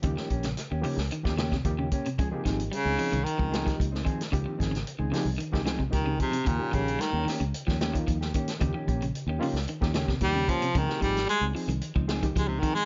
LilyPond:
<<
  \new Staff \with { instrumentName = "Reed electric piano" } { \time 4/4 \key ees \mixolydian \tempo 4 = 112 <f bes ees' g'>8 r4 <f bes ees' g'>16 r8 <f bes ees' g'>16 r16 <ees' g'>16 <f bes ees' g'>8 r8 | r16 <f bes ees' g'>8. r4. r16 <f bes ees' g'>8 r8. | <f bes ees' g'>8 r4 <f bes ees' g'>16 r8 <f bes ees' g'>16 r16 <ees' g'>16 <f bes ees' g'>8 r8 | r16 <f bes ees' g'>8. r4. r16 <f bes ees' f'>8 r8. |
<f bes ees' g'>8 r4 <f bes ees' f'>16 r8 <f bes ees' g'>16 r16 <ees' g'>16 <f bes ees' g'>8 r8 | r16 <f bes ees' g'>8. r4. r16 <f bes ees' g'>8 r8. | }
  \new Staff \with { instrumentName = "Clean electric guitar" } { \time 4/4 \key ees \mixolydian r16 <des' g'>16 <bes des' g'>16 r8 <des' g'>16 <bes des'>16 r8 <des' g'>16 <bes des' g'>16 r8 <des' g'>16 <bes des' g'>16 r16 | <f aes'>16 <c' ees' aes'>16 <f c' ees' aes'>16 r8 <c' ees' aes'>16 <f c' ees' aes'>16 r8 <c' ees' aes'>16 <f c' ees' aes'>16 r8 <c' ees'>16 <f c' ees' aes'>16 r16 | r16 <c' ees'>16 <f c' ees' aes'>16 r8 <c' ees' aes'>16 <f c' ees' aes'>16 r8 <c' ees' aes'>16 <f c' ees' aes'>16 r8 <c' ees' aes'>16 <f c' ees' aes'>16 r16 | <bes g'>16 <des' g'>16 <bes des' g'>16 r8 <des' g'>16 <bes des' g'>16 r8 <des' g'>16 <bes des' g'>16 r8 g'16 <bes des' g'>16 r16 |
r16 <des' g'>16 <bes des' g'>16 r8 <des' g'>16 <bes des' g'>16 r8 <des' g'>16 <bes des' g'>16 r8 <des' g'>16 <bes des' g'>16 r16 | <f c' ees' aes'>16 c'16 <f c' ees' aes'>16 r8 <c' ees' aes'>16 <f c' ees' aes'>16 r8 <c' ees'>16 <f c' ees' aes'>16 r8 <c' ees'>16 <f c' ees' aes'>16 r16 | }
  \new Staff \with { instrumentName = "Baritone saxophone" } { \clef bass \time 4/4 \key ees \mixolydian r1 | r4 des4 ees4 r4 | r2. ees8 c8 | bes,8 des8 ees8 r2 r8 |
r2. g8 f8 | ees8 g8 aes8 r4. aes16 c16 ees16 aes16 | }
  \new Staff \with { instrumentName = "Clean electric guitar" } { \clef bass \time 4/4 \key ees \mixolydian des16 ees8 des8 ees16 des8 ees8 des16 c8 des8 c16 | des8 ees8 g8 f16 ees8 f8 ees16 r8 ees8 | des16 ees8 des8 ees16 des8 ees8 des16 c8 des8 c16 | des8 ees8 g8 ees16 des8 f8 ees16 f8 ees8 |
des16 ees8 des8 ees16 des8 ees8 des16 c8 des8 c16 | des8 ees8 g8 f16 ees8 f8 ees16 f8 ees8 | }
  \new Staff \with { instrumentName = "Fingered electric bass" } { \clef bass \time 4/4 \key ees \mixolydian ees,16 r16 bes,,8 r16 ees,16 r16 des,16 r16 ees,8. ees,8 r8 | des,16 r16 aes,,8 r16 des,16 r16 c,16 r16 des,8. des,8 r8 | des,16 r16 aes,,8 r16 des,16 r16 c,16 r16 des,8. des,8 r8 | ees,16 r16 bes,,8 r16 ees,16 r16 des,16 r16 ees,8. ees,8 r8 |
ees,16 r16 bes,,8 r16 ees,16 r16 des,16 r16 ees,8. ees,8 r8 | des,16 r16 aes,,8 r16 des,16 r16 c,16 r16 des,8. des,8 r8 | }
  \new DrumStaff \with { instrumentName = "Drums" } \drummode { \time 4/4 <hh bd>16 sn16 <hh bd>16 <hh sn>16 <hh sn>8 hho16 sn16 hh16 <bd sn>16 <hh sn>16 <bd sn>16 <hh bd>8 <hh bd>16 hh16 | <hh bd>8 <hh bd sn>16 hh16 hh8 hho16 hh16 hh16 bd16 <hh sn>16 <hh bd sn>16 <hh bd>16 sn16 <hh bd>16 <hh sn>16 | <hh bd>8 <hh bd sn>16 <hh sn>16 hh8 <hho sn>8 hh16 <bd sn>16 <hh sn>16 bd16 <hh bd>8 <hh bd>16 hh16 | <hh bd>8 <hh bd>16 hh16 <hh sn>8 <hho sn>16 hh16 hh16 <bd sn>16 <hh sn>16 <hh bd>16 <hh bd>16 sn16 <hh bd>16 <hh sn>16 |
<hh bd>8 <hh bd>16 hh16 hh8 hho16 sn16 hh16 <bd sn>16 <hh sn>16 <bd sn>16 <hh bd>8 <hh bd>16 hh16 | <hh bd>16 sn16 <hh bd>16 <hh sn>16 hh8 hho16 hh16 hh16 bd16 <hh sn>16 <hh bd>16 <hh bd>8 <hh bd>16 hh16 | }
>>